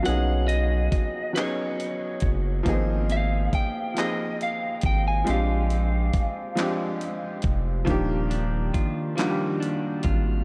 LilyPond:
<<
  \new Staff \with { instrumentName = "Lead electric guitar" } { \time 6/8 \key ees \major \tempo 4. = 46 fis''8 dis''4 cis''4 r8 | r8 f''8 g''8 ees''8 f''8 g''16 aes''16 | f''2~ f''8 r8 | r2. | }
  \new Staff \with { instrumentName = "Clean electric guitar" } { \time 6/8 \key ees \major r2. | r2. | r2. | ees8 d'8 f'8 g8 d'8 f'8 | }
  \new Staff \with { instrumentName = "Grand piano" } { \time 6/8 \key ees \major <fis b cis' dis' gis'>4~ <fis b cis' dis' gis'>16 r16 <fis b cis' dis' gis'>4~ <fis b cis' dis' gis'>16 r16 | <f bes ces' c' ees' aes'>4~ <f bes ces' c' ees' aes'>16 r16 <f bes c' ees' aes'>4~ <f bes c' ees' aes'>16 r16 | <f aes c' d' g'>4~ <f aes c' d' g'>16 r16 <f aes c' d' g'>4~ <f aes c' d' g'>16 r16 | <ees f bes d' g'>4~ <ees f bes d' g'>16 r16 <ees f bes d' ges' g'>4~ <ees f bes d' ges' g'>16 r16 | }
  \new Staff \with { instrumentName = "Sub bass" } { \clef bass \time 6/8 \key ees \major b,,4 fis,,8 r4 fis,,8 | aes,,4 aes,,8 r4 aes,,8 | bes,,4 f,,8 r4 f,,8 | ees,,4 aes,,8 r4 aes,,8 | }
  \new DrumStaff \with { instrumentName = "Drums" } \drummode { \time 6/8 hh8 hh8 <hh bd>8 <hc hh>8 hh8 <hh bd>8 | <hh bd>8 hh8 <hh bd>8 <hc hh>8 hh8 <hh bd>8 | hh8 hh8 <hh bd>8 <hc hh>8 hh8 <hh bd>8 | <hh bd>8 hh8 <hh bd>8 <hc hh>8 hh8 <hh bd>8 | }
>>